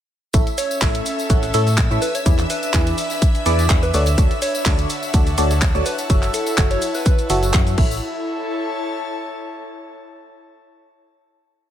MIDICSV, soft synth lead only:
0, 0, Header, 1, 2, 480
1, 0, Start_track
1, 0, Key_signature, 3, "major"
1, 0, Tempo, 480000
1, 339, Time_signature, 4, 2, 24, 8
1, 11703, End_track
2, 0, Start_track
2, 0, Title_t, "Soft synth lead"
2, 0, Program_c, 0, 80
2, 579, Note_on_c, 0, 73, 93
2, 769, Note_off_c, 0, 73, 0
2, 2018, Note_on_c, 0, 71, 95
2, 2122, Note_off_c, 0, 71, 0
2, 2149, Note_on_c, 0, 73, 93
2, 2219, Note_off_c, 0, 73, 0
2, 2261, Note_on_c, 0, 73, 75
2, 2343, Note_off_c, 0, 73, 0
2, 2501, Note_on_c, 0, 71, 96
2, 2869, Note_off_c, 0, 71, 0
2, 3830, Note_on_c, 0, 71, 85
2, 3900, Note_off_c, 0, 71, 0
2, 3940, Note_on_c, 0, 71, 81
2, 4022, Note_off_c, 0, 71, 0
2, 4420, Note_on_c, 0, 73, 96
2, 4610, Note_off_c, 0, 73, 0
2, 5857, Note_on_c, 0, 71, 95
2, 5962, Note_off_c, 0, 71, 0
2, 6339, Note_on_c, 0, 69, 97
2, 6682, Note_off_c, 0, 69, 0
2, 6708, Note_on_c, 0, 73, 92
2, 6890, Note_off_c, 0, 73, 0
2, 6948, Note_on_c, 0, 71, 96
2, 7428, Note_off_c, 0, 71, 0
2, 11703, End_track
0, 0, End_of_file